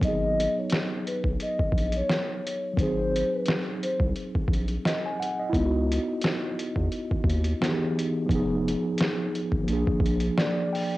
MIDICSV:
0, 0, Header, 1, 5, 480
1, 0, Start_track
1, 0, Key_signature, 5, "minor"
1, 0, Tempo, 689655
1, 13, Time_signature, 4, 2, 24, 8
1, 7639, End_track
2, 0, Start_track
2, 0, Title_t, "Vibraphone"
2, 0, Program_c, 0, 11
2, 30, Note_on_c, 0, 75, 98
2, 375, Note_off_c, 0, 75, 0
2, 408, Note_on_c, 0, 73, 70
2, 493, Note_off_c, 0, 73, 0
2, 748, Note_on_c, 0, 71, 72
2, 863, Note_off_c, 0, 71, 0
2, 994, Note_on_c, 0, 75, 74
2, 1337, Note_off_c, 0, 75, 0
2, 1368, Note_on_c, 0, 73, 72
2, 1915, Note_off_c, 0, 73, 0
2, 1949, Note_on_c, 0, 72, 83
2, 2295, Note_off_c, 0, 72, 0
2, 2327, Note_on_c, 0, 71, 68
2, 2413, Note_off_c, 0, 71, 0
2, 2667, Note_on_c, 0, 72, 81
2, 2783, Note_off_c, 0, 72, 0
2, 7639, End_track
3, 0, Start_track
3, 0, Title_t, "Tine electric piano"
3, 0, Program_c, 1, 4
3, 0, Control_c, 1, 64, 127
3, 0, Note_on_c, 1, 54, 64
3, 16, Note_on_c, 1, 59, 52
3, 23, Control_c, 1, 64, 0
3, 37, Note_on_c, 1, 63, 54
3, 57, Note_on_c, 1, 68, 64
3, 139, Control_c, 1, 64, 127
3, 1896, Note_off_c, 1, 54, 0
3, 1903, Note_on_c, 1, 54, 56
3, 1907, Note_off_c, 1, 59, 0
3, 1917, Note_off_c, 1, 63, 0
3, 1925, Note_on_c, 1, 60, 58
3, 1927, Note_off_c, 1, 68, 0
3, 1942, Control_c, 1, 64, 0
3, 1946, Note_on_c, 1, 63, 54
3, 1967, Note_on_c, 1, 68, 74
3, 2070, Control_c, 1, 64, 127
3, 3381, Note_on_c, 1, 75, 66
3, 3506, Note_off_c, 1, 75, 0
3, 3520, Note_on_c, 1, 80, 63
3, 3614, Note_off_c, 1, 80, 0
3, 3618, Note_on_c, 1, 78, 72
3, 3745, Note_off_c, 1, 78, 0
3, 3756, Note_on_c, 1, 75, 63
3, 3810, Note_off_c, 1, 54, 0
3, 3821, Note_off_c, 1, 60, 0
3, 3826, Note_on_c, 1, 64, 85
3, 3832, Note_off_c, 1, 63, 0
3, 3843, Note_off_c, 1, 68, 0
3, 3849, Note_on_c, 1, 59, 71
3, 3863, Control_c, 1, 64, 0
3, 3870, Note_on_c, 1, 63, 72
3, 3890, Note_on_c, 1, 65, 72
3, 3923, Note_off_c, 1, 65, 0
3, 3934, Note_on_c, 1, 66, 80
3, 3972, Control_c, 1, 64, 127
3, 3981, Note_off_c, 1, 75, 0
3, 5252, Note_off_c, 1, 64, 0
3, 5263, Note_off_c, 1, 59, 0
3, 5274, Note_off_c, 1, 63, 0
3, 5294, Note_on_c, 1, 52, 57
3, 5305, Note_on_c, 1, 59, 57
3, 5306, Note_off_c, 1, 66, 0
3, 5317, Note_on_c, 1, 63, 55
3, 5327, Note_on_c, 1, 67, 55
3, 5361, Note_off_c, 1, 67, 0
3, 5372, Note_on_c, 1, 68, 63
3, 5748, Note_on_c, 1, 53, 75
3, 5760, Note_off_c, 1, 59, 0
3, 5768, Note_on_c, 1, 59, 65
3, 5774, Note_off_c, 1, 52, 0
3, 5781, Control_c, 1, 64, 0
3, 5782, Note_off_c, 1, 63, 0
3, 5791, Note_on_c, 1, 63, 71
3, 5804, Note_off_c, 1, 68, 0
3, 5813, Note_on_c, 1, 68, 79
3, 5902, Control_c, 1, 64, 127
3, 6701, Note_off_c, 1, 53, 0
3, 6709, Note_on_c, 1, 53, 73
3, 6712, Note_off_c, 1, 59, 0
3, 6723, Note_off_c, 1, 63, 0
3, 6729, Note_on_c, 1, 58, 61
3, 6734, Note_off_c, 1, 68, 0
3, 6742, Control_c, 1, 64, 0
3, 6751, Note_on_c, 1, 62, 73
3, 6772, Note_on_c, 1, 68, 88
3, 6880, Control_c, 1, 64, 127
3, 7221, Note_on_c, 1, 74, 76
3, 7440, Note_off_c, 1, 74, 0
3, 7465, Note_on_c, 1, 79, 70
3, 7639, Note_off_c, 1, 53, 0
3, 7639, Note_off_c, 1, 58, 0
3, 7639, Note_off_c, 1, 62, 0
3, 7639, Note_off_c, 1, 68, 0
3, 7639, Note_off_c, 1, 79, 0
3, 7639, End_track
4, 0, Start_track
4, 0, Title_t, "Analog synth bass"
4, 0, Program_c, 2, 38
4, 10, Note_on_c, 2, 32, 104
4, 328, Note_off_c, 2, 32, 0
4, 865, Note_on_c, 2, 35, 90
4, 954, Note_off_c, 2, 35, 0
4, 1111, Note_on_c, 2, 34, 48
4, 1152, Note_off_c, 2, 34, 0
4, 1199, Note_on_c, 2, 34, 85
4, 1407, Note_off_c, 2, 34, 0
4, 1932, Note_on_c, 2, 32, 90
4, 2249, Note_off_c, 2, 32, 0
4, 2785, Note_on_c, 2, 36, 82
4, 2875, Note_off_c, 2, 36, 0
4, 3030, Note_on_c, 2, 34, 47
4, 3072, Note_off_c, 2, 34, 0
4, 3120, Note_on_c, 2, 34, 90
4, 3328, Note_off_c, 2, 34, 0
4, 3851, Note_on_c, 2, 37, 103
4, 4168, Note_off_c, 2, 37, 0
4, 4706, Note_on_c, 2, 40, 92
4, 4795, Note_off_c, 2, 40, 0
4, 4951, Note_on_c, 2, 39, 49
4, 4992, Note_off_c, 2, 39, 0
4, 5042, Note_on_c, 2, 39, 81
4, 5249, Note_off_c, 2, 39, 0
4, 5774, Note_on_c, 2, 29, 101
4, 6090, Note_off_c, 2, 29, 0
4, 6626, Note_on_c, 2, 32, 94
4, 6715, Note_off_c, 2, 32, 0
4, 6736, Note_on_c, 2, 34, 115
4, 6849, Note_off_c, 2, 34, 0
4, 6873, Note_on_c, 2, 34, 47
4, 6914, Note_off_c, 2, 34, 0
4, 6961, Note_on_c, 2, 34, 90
4, 7169, Note_off_c, 2, 34, 0
4, 7639, End_track
5, 0, Start_track
5, 0, Title_t, "Drums"
5, 10, Note_on_c, 9, 36, 113
5, 18, Note_on_c, 9, 42, 71
5, 80, Note_off_c, 9, 36, 0
5, 88, Note_off_c, 9, 42, 0
5, 278, Note_on_c, 9, 42, 73
5, 348, Note_off_c, 9, 42, 0
5, 485, Note_on_c, 9, 42, 78
5, 505, Note_on_c, 9, 38, 123
5, 555, Note_off_c, 9, 42, 0
5, 574, Note_off_c, 9, 38, 0
5, 746, Note_on_c, 9, 42, 55
5, 815, Note_off_c, 9, 42, 0
5, 863, Note_on_c, 9, 36, 83
5, 933, Note_off_c, 9, 36, 0
5, 975, Note_on_c, 9, 42, 65
5, 1044, Note_off_c, 9, 42, 0
5, 1109, Note_on_c, 9, 36, 89
5, 1179, Note_off_c, 9, 36, 0
5, 1198, Note_on_c, 9, 36, 97
5, 1237, Note_on_c, 9, 42, 68
5, 1268, Note_off_c, 9, 36, 0
5, 1307, Note_off_c, 9, 42, 0
5, 1338, Note_on_c, 9, 42, 56
5, 1408, Note_off_c, 9, 42, 0
5, 1459, Note_on_c, 9, 38, 106
5, 1473, Note_on_c, 9, 42, 69
5, 1529, Note_off_c, 9, 38, 0
5, 1543, Note_off_c, 9, 42, 0
5, 1718, Note_on_c, 9, 42, 70
5, 1787, Note_off_c, 9, 42, 0
5, 1930, Note_on_c, 9, 36, 114
5, 1939, Note_on_c, 9, 42, 73
5, 1999, Note_off_c, 9, 36, 0
5, 2009, Note_off_c, 9, 42, 0
5, 2198, Note_on_c, 9, 42, 66
5, 2267, Note_off_c, 9, 42, 0
5, 2405, Note_on_c, 9, 42, 72
5, 2424, Note_on_c, 9, 38, 120
5, 2475, Note_off_c, 9, 42, 0
5, 2494, Note_off_c, 9, 38, 0
5, 2666, Note_on_c, 9, 42, 61
5, 2735, Note_off_c, 9, 42, 0
5, 2783, Note_on_c, 9, 36, 89
5, 2852, Note_off_c, 9, 36, 0
5, 2894, Note_on_c, 9, 42, 61
5, 2964, Note_off_c, 9, 42, 0
5, 3029, Note_on_c, 9, 36, 86
5, 3099, Note_off_c, 9, 36, 0
5, 3118, Note_on_c, 9, 36, 98
5, 3156, Note_on_c, 9, 42, 63
5, 3188, Note_off_c, 9, 36, 0
5, 3226, Note_off_c, 9, 42, 0
5, 3258, Note_on_c, 9, 42, 52
5, 3328, Note_off_c, 9, 42, 0
5, 3379, Note_on_c, 9, 38, 102
5, 3393, Note_on_c, 9, 42, 73
5, 3448, Note_off_c, 9, 38, 0
5, 3462, Note_off_c, 9, 42, 0
5, 3637, Note_on_c, 9, 42, 72
5, 3707, Note_off_c, 9, 42, 0
5, 3850, Note_on_c, 9, 36, 103
5, 3860, Note_on_c, 9, 42, 63
5, 3920, Note_off_c, 9, 36, 0
5, 3929, Note_off_c, 9, 42, 0
5, 4119, Note_on_c, 9, 42, 75
5, 4189, Note_off_c, 9, 42, 0
5, 4326, Note_on_c, 9, 42, 83
5, 4345, Note_on_c, 9, 38, 116
5, 4396, Note_off_c, 9, 42, 0
5, 4415, Note_off_c, 9, 38, 0
5, 4588, Note_on_c, 9, 42, 60
5, 4657, Note_off_c, 9, 42, 0
5, 4704, Note_on_c, 9, 36, 86
5, 4774, Note_off_c, 9, 36, 0
5, 4815, Note_on_c, 9, 42, 61
5, 4885, Note_off_c, 9, 42, 0
5, 4950, Note_on_c, 9, 36, 85
5, 5020, Note_off_c, 9, 36, 0
5, 5040, Note_on_c, 9, 36, 98
5, 5078, Note_on_c, 9, 42, 64
5, 5109, Note_off_c, 9, 36, 0
5, 5148, Note_off_c, 9, 42, 0
5, 5180, Note_on_c, 9, 42, 57
5, 5250, Note_off_c, 9, 42, 0
5, 5302, Note_on_c, 9, 38, 107
5, 5316, Note_on_c, 9, 42, 72
5, 5372, Note_off_c, 9, 38, 0
5, 5385, Note_off_c, 9, 42, 0
5, 5559, Note_on_c, 9, 42, 70
5, 5629, Note_off_c, 9, 42, 0
5, 5771, Note_on_c, 9, 36, 109
5, 5781, Note_on_c, 9, 42, 73
5, 5841, Note_off_c, 9, 36, 0
5, 5851, Note_off_c, 9, 42, 0
5, 6041, Note_on_c, 9, 42, 76
5, 6111, Note_off_c, 9, 42, 0
5, 6248, Note_on_c, 9, 42, 80
5, 6267, Note_on_c, 9, 38, 117
5, 6318, Note_off_c, 9, 42, 0
5, 6337, Note_off_c, 9, 38, 0
5, 6508, Note_on_c, 9, 42, 59
5, 6578, Note_off_c, 9, 42, 0
5, 6625, Note_on_c, 9, 36, 83
5, 6694, Note_off_c, 9, 36, 0
5, 6737, Note_on_c, 9, 42, 60
5, 6806, Note_off_c, 9, 42, 0
5, 6871, Note_on_c, 9, 36, 85
5, 6941, Note_off_c, 9, 36, 0
5, 6960, Note_on_c, 9, 36, 105
5, 7000, Note_on_c, 9, 42, 64
5, 7030, Note_off_c, 9, 36, 0
5, 7069, Note_off_c, 9, 42, 0
5, 7100, Note_on_c, 9, 42, 57
5, 7170, Note_off_c, 9, 42, 0
5, 7222, Note_on_c, 9, 38, 106
5, 7236, Note_on_c, 9, 42, 67
5, 7292, Note_off_c, 9, 38, 0
5, 7305, Note_off_c, 9, 42, 0
5, 7481, Note_on_c, 9, 46, 49
5, 7551, Note_off_c, 9, 46, 0
5, 7639, End_track
0, 0, End_of_file